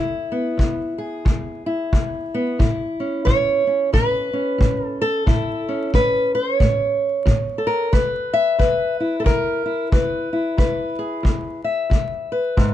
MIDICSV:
0, 0, Header, 1, 3, 480
1, 0, Start_track
1, 0, Key_signature, 4, "major"
1, 0, Tempo, 665188
1, 1875, Time_signature, 4, 2, 24, 8
1, 9192, End_track
2, 0, Start_track
2, 0, Title_t, "Steel-string acoustic guitar"
2, 0, Program_c, 0, 25
2, 0, Note_on_c, 0, 40, 69
2, 0, Note_on_c, 0, 64, 58
2, 229, Note_on_c, 0, 59, 44
2, 385, Note_off_c, 0, 40, 0
2, 414, Note_on_c, 0, 40, 59
2, 710, Note_on_c, 0, 68, 50
2, 866, Note_off_c, 0, 40, 0
2, 903, Note_on_c, 0, 40, 67
2, 1197, Note_off_c, 0, 64, 0
2, 1200, Note_on_c, 0, 64, 50
2, 1351, Note_off_c, 0, 40, 0
2, 1389, Note_on_c, 0, 40, 63
2, 1679, Note_off_c, 0, 59, 0
2, 1692, Note_on_c, 0, 59, 50
2, 1835, Note_off_c, 0, 40, 0
2, 1846, Note_off_c, 0, 68, 0
2, 1856, Note_off_c, 0, 59, 0
2, 1869, Note_on_c, 0, 45, 67
2, 1873, Note_off_c, 0, 64, 0
2, 1873, Note_on_c, 0, 64, 46
2, 2164, Note_on_c, 0, 61, 39
2, 2315, Note_off_c, 0, 45, 0
2, 2342, Note_off_c, 0, 64, 0
2, 2345, Note_on_c, 0, 73, 93
2, 2349, Note_on_c, 0, 45, 61
2, 2646, Note_off_c, 0, 61, 0
2, 2649, Note_on_c, 0, 61, 41
2, 2795, Note_off_c, 0, 45, 0
2, 2831, Note_off_c, 0, 73, 0
2, 2835, Note_on_c, 0, 45, 67
2, 2840, Note_on_c, 0, 71, 92
2, 3118, Note_off_c, 0, 61, 0
2, 3127, Note_on_c, 0, 61, 43
2, 3279, Note_off_c, 0, 45, 0
2, 3307, Note_on_c, 0, 45, 63
2, 3511, Note_off_c, 0, 71, 0
2, 3511, Note_on_c, 0, 69, 92
2, 3619, Note_off_c, 0, 69, 0
2, 3619, Note_on_c, 0, 69, 83
2, 3754, Note_off_c, 0, 45, 0
2, 3775, Note_off_c, 0, 61, 0
2, 3798, Note_on_c, 0, 45, 68
2, 3805, Note_on_c, 0, 64, 46
2, 4103, Note_on_c, 0, 61, 43
2, 4240, Note_off_c, 0, 45, 0
2, 4283, Note_on_c, 0, 45, 63
2, 4288, Note_off_c, 0, 64, 0
2, 4291, Note_on_c, 0, 71, 85
2, 4575, Note_off_c, 0, 71, 0
2, 4580, Note_on_c, 0, 72, 77
2, 4723, Note_off_c, 0, 45, 0
2, 4724, Note_off_c, 0, 72, 0
2, 4724, Note_on_c, 0, 73, 77
2, 4764, Note_off_c, 0, 69, 0
2, 4766, Note_on_c, 0, 45, 72
2, 5204, Note_off_c, 0, 45, 0
2, 5235, Note_on_c, 0, 45, 69
2, 5471, Note_on_c, 0, 69, 59
2, 5530, Note_off_c, 0, 73, 0
2, 5533, Note_on_c, 0, 70, 86
2, 5678, Note_off_c, 0, 45, 0
2, 5702, Note_off_c, 0, 61, 0
2, 5716, Note_off_c, 0, 69, 0
2, 5719, Note_on_c, 0, 71, 90
2, 5720, Note_off_c, 0, 70, 0
2, 5723, Note_on_c, 0, 40, 69
2, 6014, Note_on_c, 0, 76, 102
2, 6162, Note_off_c, 0, 40, 0
2, 6191, Note_off_c, 0, 71, 0
2, 6195, Note_on_c, 0, 40, 71
2, 6200, Note_on_c, 0, 71, 81
2, 6491, Note_off_c, 0, 76, 0
2, 6497, Note_on_c, 0, 64, 43
2, 6635, Note_off_c, 0, 71, 0
2, 6637, Note_on_c, 0, 69, 62
2, 6638, Note_off_c, 0, 40, 0
2, 6669, Note_on_c, 0, 40, 73
2, 6677, Note_off_c, 0, 69, 0
2, 6680, Note_on_c, 0, 70, 90
2, 6959, Note_off_c, 0, 64, 0
2, 6967, Note_on_c, 0, 64, 41
2, 7114, Note_off_c, 0, 40, 0
2, 7155, Note_on_c, 0, 40, 64
2, 7158, Note_off_c, 0, 70, 0
2, 7163, Note_on_c, 0, 71, 68
2, 7444, Note_off_c, 0, 64, 0
2, 7452, Note_on_c, 0, 64, 42
2, 7597, Note_off_c, 0, 40, 0
2, 7625, Note_off_c, 0, 71, 0
2, 7630, Note_on_c, 0, 40, 63
2, 7634, Note_on_c, 0, 71, 55
2, 7929, Note_on_c, 0, 68, 44
2, 8074, Note_off_c, 0, 40, 0
2, 8104, Note_on_c, 0, 40, 66
2, 8399, Note_off_c, 0, 64, 0
2, 8402, Note_on_c, 0, 76, 55
2, 8550, Note_off_c, 0, 40, 0
2, 8585, Note_on_c, 0, 40, 67
2, 8881, Note_off_c, 0, 71, 0
2, 8889, Note_on_c, 0, 71, 57
2, 9030, Note_off_c, 0, 40, 0
2, 9070, Note_on_c, 0, 44, 55
2, 9192, Note_off_c, 0, 44, 0
2, 9192, Note_off_c, 0, 68, 0
2, 9192, Note_off_c, 0, 71, 0
2, 9192, Note_off_c, 0, 76, 0
2, 9192, End_track
3, 0, Start_track
3, 0, Title_t, "Drums"
3, 426, Note_on_c, 9, 36, 55
3, 498, Note_off_c, 9, 36, 0
3, 908, Note_on_c, 9, 36, 59
3, 980, Note_off_c, 9, 36, 0
3, 1391, Note_on_c, 9, 36, 60
3, 1464, Note_off_c, 9, 36, 0
3, 1875, Note_on_c, 9, 36, 65
3, 1947, Note_off_c, 9, 36, 0
3, 2358, Note_on_c, 9, 36, 57
3, 2431, Note_off_c, 9, 36, 0
3, 2841, Note_on_c, 9, 36, 55
3, 2913, Note_off_c, 9, 36, 0
3, 3324, Note_on_c, 9, 36, 61
3, 3396, Note_off_c, 9, 36, 0
3, 3804, Note_on_c, 9, 36, 66
3, 3876, Note_off_c, 9, 36, 0
3, 4285, Note_on_c, 9, 36, 55
3, 4357, Note_off_c, 9, 36, 0
3, 4764, Note_on_c, 9, 36, 60
3, 4836, Note_off_c, 9, 36, 0
3, 5244, Note_on_c, 9, 36, 62
3, 5316, Note_off_c, 9, 36, 0
3, 5723, Note_on_c, 9, 36, 62
3, 5795, Note_off_c, 9, 36, 0
3, 6203, Note_on_c, 9, 36, 53
3, 6275, Note_off_c, 9, 36, 0
3, 6682, Note_on_c, 9, 36, 63
3, 6754, Note_off_c, 9, 36, 0
3, 7161, Note_on_c, 9, 36, 65
3, 7233, Note_off_c, 9, 36, 0
3, 7638, Note_on_c, 9, 36, 62
3, 7710, Note_off_c, 9, 36, 0
3, 8117, Note_on_c, 9, 36, 54
3, 8189, Note_off_c, 9, 36, 0
3, 8596, Note_on_c, 9, 36, 57
3, 8668, Note_off_c, 9, 36, 0
3, 9074, Note_on_c, 9, 36, 61
3, 9147, Note_off_c, 9, 36, 0
3, 9192, End_track
0, 0, End_of_file